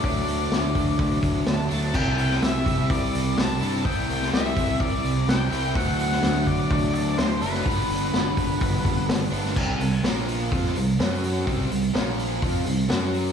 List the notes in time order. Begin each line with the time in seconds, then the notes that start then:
Already playing: D5
0.03 D2 D3 F#3 A3 D4, kick, open hi-hat
0.28 D2, open hi-hat
0.51 D2, snare, open hi-hat
0.75 D2, kick, open hi-hat
0.99 D2, kick, open hi-hat
1.23 D2, kick, open hi-hat
1.46 D2 A5, snare, open hi-hat
1.69 D2 D3 F#3 A3 D4, open hi-hat
1.93 C2 C3 G3 C4 E4 G5, kick, crash
2.18 open hi-hat
2.31 snare
2.42 C2 E5, snare, open hi-hat
2.66 C3, kick, open hi-hat
2.90 C2 D5, kick, open hi-hat
3.14 C2, open hi-hat
3.37 C2 A5, snare, open hi-hat
3.61 G2 C3 G3 C4 E4, open hi-hat
3.84 C2 C3 G3 C4 G5, kick, open hi-hat
3.88 E4
4.10 C2, open hi-hat
4.22 snare
4.33 C2 E5, snare, open hi-hat
4.57 C2, kick, open hi-hat
4.80 C2 D5, kick, open hi-hat
5.04 C2, open hi-hat
5.27 C2 G5, snare, open hi-hat
5.50 C2 C3 G3 C4 E4, open hi-hat
5.75 D2 D3 F#3 A3 D4 F#5, kick, open hi-hat
6.00 F#5, open hi-hat
6.11 snare
6.23 D2, snare, open hi-hat
6.47 D3 D5, kick, open hi-hat
6.70 D2 D5, kick, open hi-hat
6.94 D2 D5, open hi-hat
7.18 D2 C5, snare, open hi-hat
7.41 F#1 D3 F#3 A3 D4 B4, open hi-hat
7.54 snare
7.65 G1 G2 D3 F3 B3 D4, kick, open hi-hat
7.89 G1, open hi-hat
8.14 G1, snare, open hi-hat
8.37 G1, kick, open hi-hat
8.61 G1, kick, open hi-hat
8.85 G1, kick, open hi-hat
9.08 G1, snare, open hi-hat
9.31 G1 G2 D3 F3 B3 D4, open hi-hat
9.45 snare
9.56 C2 C3 G3 C4, kick, crash
9.79 C2 C3 G3, open hi-hat
10.03 A#1 A#2 F3 A#3, snare, open hi-hat
10.28 open hi-hat
10.52 F2 F3 C4 F4, kick, open hi-hat
10.65 snare
10.75 C2 C3 G3, open hi-hat
11.00 F#2 F#3 C#4 F#4, snare, open hi-hat
11.24 open hi-hat
11.46 C2 C3 G3 C4, kick, open hi-hat
11.70 C2 C3 G3, open hi-hat
11.93 A#1 A#2 F3 A#3, snare, open hi-hat
12.19 open hi-hat
12.42 F2 F3 C4 F4, kick, open hi-hat
12.66 C2 C3 G3, open hi-hat
12.89 F#2 F#3 C#4 F#4, snare, open hi-hat
13.14 open hi-hat